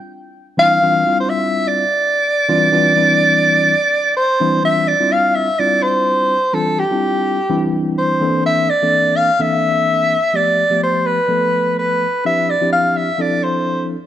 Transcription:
0.57 0.77 E3 medium
0.57 0.78 G3 medium
0.57 0.78 C4 medium
0.57 0.78 D4 medium
0.57 0.78 E4 medium
0.57 1.15 F5 loud
0.82 1.02 E3 medium
0.82 1.02 G3 medium
0.82 1.02 C4 medium
0.82 1.02 D4 medium
0.82 1.02 F4 medium
1.07 1.83 G3 medium
1.07 1.83 C4 medium
1.07 1.83 D4 soft
1.07 1.83 E4 medium
1.07 1.83 F4 medium
1.20 1.31 C5 medium
1.29 1.69 E5 medium
1.68 4.16 D5 medium
2.49 2.68 E3 medium
2.49 2.68 G3 medium
2.49 2.68 C4 medium
2.49 2.68 D4 medium
2.49 2.68 F4 medium
2.72 2.92 E3 medium
2.72 2.92 G3 medium
2.72 2.92 C4 medium
2.72 2.92 D4 medium
2.72 2.92 F4 medium
2.96 3.73 E3 medium
2.96 3.73 G3 medium
2.96 3.73 C4 medium
2.96 3.73 D4 medium
2.96 3.73 E4 medium
4.17 4.60 C5 medium
4.40 4.59 E3 medium
4.40 4.59 G3 medium
4.40 4.59 C4 medium
4.40 4.60 D4 medium
4.40 4.60 E4 medium
4.63 4.92 E3 medium
4.63 4.92 G3 medium
4.63 4.92 C4 soft
4.63 4.92 D4 medium
4.63 4.93 F4 medium
4.63 4.89 E5 medium
4.88 5.14 D5 medium
5.00 5.48 G3 medium
5.00 5.48 C4 medium
5.00 5.48 D4 medium
5.00 5.47 E4 medium
5.00 5.48 F4 medium
5.12 5.37 F5 medium
5.35 5.61 E5 medium
5.59 6.35 G3 medium
5.59 6.35 C4 medium
5.59 6.35 D4 medium
5.59 6.35 E4 medium
5.59 6.35 F4 medium
5.59 5.84 D5 medium
5.82 6.56 C5 medium
6.53 6.82 E3 medium
6.53 6.82 G3 medium
6.53 6.83 C4 medium
6.53 6.82 D4 medium
6.53 6.83 F4 medium
6.53 6.81 A4 medium
6.79 7.73 G4 medium
6.91 7.38 G3 medium
6.91 7.38 C4 medium
6.91 7.38 D4 medium
6.91 7.38 E4 medium
6.91 7.39 F4 medium
7.50 8.20 E3 medium
7.50 8.21 G3 medium
7.50 8.20 C4 medium
7.50 8.20 D4 medium
7.50 8.21 E4 medium
7.98 8.42 C5 medium
8.21 8.68 E3 medium
8.21 8.68 A#3 medium
8.21 8.68 C4 medium
8.21 8.68 D4 medium
8.21 8.69 A4 medium
8.46 8.71 E5 medium
8.70 9.18 D5 medium
8.82 9.29 E3 medium
8.82 9.29 A#3 medium
8.82 9.29 C4 medium
8.82 9.29 D4 medium
8.82 9.29 A4 medium
9.16 9.43 F5 medium
9.39 10.16 E3 medium
9.39 10.16 A#3 medium
9.39 10.16 C4 medium
9.39 10.16 D4 medium
9.39 10.16 A4 medium
9.39 10.38 E5 medium
10.33 10.63 F3 medium
10.33 10.63 A3 soft
10.33 10.63 B3 soft
10.33 10.63 G4 medium
10.33 10.83 D5 medium
10.70 11.18 F3 medium
10.70 11.18 A3 medium
10.70 11.18 B3 medium
10.70 11.18 G4 medium
10.83 11.07 C5 medium
11.06 11.77 B4 medium
11.28 12.05 F3 medium
11.28 12.06 A3 medium
11.28 12.05 B3 medium
11.28 12.06 A4 medium
11.79 12.22 B4 medium
12.25 12.54 F3 medium
12.25 12.54 C4 soft
12.25 12.54 D4 medium
12.25 12.54 E4 medium
12.25 12.54 G4 medium
12.25 12.52 E5 medium
12.50 12.72 D5 medium
12.61 13.09 F3 medium
12.61 13.09 C4 medium
12.61 13.09 D4 medium
12.61 13.09 E4 medium
12.61 13.09 G4 medium
12.73 12.98 F5 medium
12.97 13.23 E5 medium
13.18 13.95 F3 medium
13.18 13.95 C4 medium
13.18 13.96 D4 medium
13.18 13.96 E4 medium
13.18 13.96 A4 medium
13.18 13.45 D5 medium
13.44 13.88 C5 medium

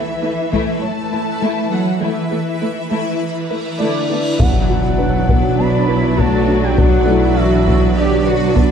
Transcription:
0.00 0.83 E3 medium
0.00 4.35 E3 medium
0.00 4.35 E4 medium
0.00 0.11 A4 medium
0.00 4.35 B4 medium
0.00 0.83 E5 medium
0.00 4.35 E5 medium
0.00 1.09 F#5 soft
0.22 0.30 A3 soft
0.22 0.31 E4 soft
0.22 0.41 E4 medium
0.22 0.31 B4 soft
0.52 0.60 A3 medium
0.52 0.71 A3 medium
0.52 0.81 A3 medium
0.52 0.81 E4 medium
0.52 taiko soft
0.82 1.72 A3 medium
0.82 2.57 C#5 soft
0.82 1.72 A5 medium
1.12 1.20 A3 soft
1.12 1.20 E4 soft
1.12 1.20 B4 soft
1.12 1.31 B4 medium
1.41 1.49 A3 soft
1.41 1.70 A3 soft
1.41 1.60 A3 medium
1.41 1.70 E4 soft
1.71 2.01 F#3 soft
1.71 1.80 A3 soft
1.71 1.79 B3 soft
1.71 1.90 E4 soft
1.71 1.80 A4 soft
1.71 2.02 F#5 medium
2.01 3.80 E3 soft
2.01 2.09 A3 soft
2.01 2.29 A3 soft
2.01 2.20 A3 medium
2.01 2.29 E4 soft
2.01 3.79 E5 soft
2.01 cymbal swell soft
2.31 2.39 A3 soft
2.31 2.40 B3 soft
2.31 2.39 A4 soft
2.31 2.50 A4 soft
2.61 2.69 A3 soft
2.61 2.69 E4 soft
2.61 2.80 E4 soft
2.61 2.69 B4 soft
2.90 3.18 A3 soft
2.90 2.99 A3 soft
2.90 3.09 A3 medium
2.90 3.18 E4 soft
3.50 3.59 A3 soft
3.50 3.58 E4 soft
3.50 3.58 B4 soft
3.50 3.68 B4 soft
3.78 4.36 D3 soft
3.78 3.88 A3 soft
3.78 4.08 A3 soft
3.78 3.98 A3 medium
3.78 4.08 E4 soft
3.78 4.35 D5 medium
4.10 4.18 A3 soft
4.10 4.18 B3 soft
4.10 4.28 E4 soft
4.10 4.18 A4 soft
4.38 8.71 B1 medium
4.38 8.71 F#3 medium
4.38 5.58 F#3 medium
4.38 8.71 F#3 medium
4.38 4.57 B3 medium
4.38 8.71 D4 soft
4.38 8.71 D4 medium
4.38 8.71 F#4 medium
4.38 8.71 B4 medium
4.38 8.71 D5 soft
4.38 5.55 F#5 medium
4.38 taiko medium
4.38 impact medium
4.70 4.87 F#4 medium
4.98 5.17 D4 medium
4.98 6.73 B4 soft
5.29 5.47 B3 medium
5.29 taiko medium
5.58 6.18 B3 medium
5.58 5.86 D4 medium
5.58 6.19 B5 loud
5.88 6.18 E4 medium
5.88 6.06 B4 medium
6.17 6.62 A3 medium
6.17 6.36 B3 medium
6.17 6.77 F#4 medium
6.17 6.62 A5 medium
6.17 taiko medium
6.48 6.66 D4 medium
6.64 6.78 G3 medium
6.64 6.79 G5 medium
6.77 7.36 F#3 medium
6.77 6.96 B3 medium
6.77 7.07 D4 medium
6.77 7.35 F#5 medium
6.77 taiko medium
7.06 8.71 A3 soft
7.06 7.37 E4 medium
7.06 7.25 F#4 medium
7.06 8.71 A4 soft
7.36 7.96 E3 medium
7.36 7.55 D4 medium
7.36 7.96 F#4 medium
7.36 7.94 E5 medium
7.67 7.85 B3 medium
7.67 taiko medium
7.96 8.56 D3 medium
7.96 8.25 G4 medium
7.96 8.55 D5 medium
8.26 8.56 F#4 medium
8.26 8.44 B4 medium
8.55 8.71 B3 medium
8.55 8.71 D4 medium
8.55 taiko medium

